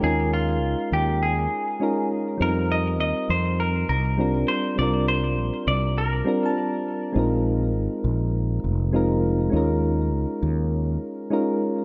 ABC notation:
X:1
M:4/4
L:1/16
Q:"Swing 16ths" 1/4=101
K:Ebmix
V:1 name="Clean electric guitar"
A2 F4 G2 A6 z2 | B2 e2 e2 c2 B2 B4 c2 | =d2 c4 d2 B6 z2 | z16 |
z16 |]
V:2 name="Synth keys"
[A,DEFB]12 [A,DEFB]4 | [G,CEFB]12 [G,C=DFB]4 | [G,C=DFB]8- [G,CDFB]2 [G,CDFB] [G,CDF=a]4- [G,CDFa] | [A,CEFB]12 [A,CEFB]4 |
[A,DEFB]12 [A,DEFB]4 |]
V:3 name="Fretless electric bass" clef=bass
E,,4 D,,2 E,,4 z6 | F,,4 E,,2 F,,4 C,,4 z2 | C,,4 B,,,2 C,,4 z6 | B,,,4 A,,,2 B,,,4 F,,,6 |
E,,4 D,,2 E,,4 z6 |]